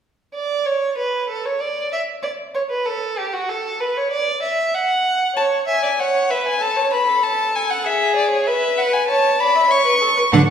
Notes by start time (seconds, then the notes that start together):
0.34 D5
0.66 C#5
0.98 B4
1.29 A4
1.45 C#5
1.60 D5
1.93 E5
2.23 D5
2.55 C#5
2.70 B4
2.86 A4
3.18 G4
3.33 F#4
3.49 A4
3.80 B4
3.97 C#5
4.12 D5
4.43 E5
4.75 F#5
5.36 C#5 A5
5.68 E5 G#5
5.83 D5
5.99 C#5 F#5
6.30 B4 E5
6.47 G#5
6.61 A4 A5
6.77 C#5
6.92 B4 B5
7.08 A4
7.23 A5
7.55 G#5
7.70 F#5
7.84 G#4 E5
8.16 D5
8.31 C#5
8.47 B4 E5
8.78 F#5
8.93 G#5
9.08 C#5 A5
9.40 D5 B5
9.56 E5
9.70 C#5 C#6
9.86 B4
10.02 A4
10.16 B4
10.32 D3 A4 F#5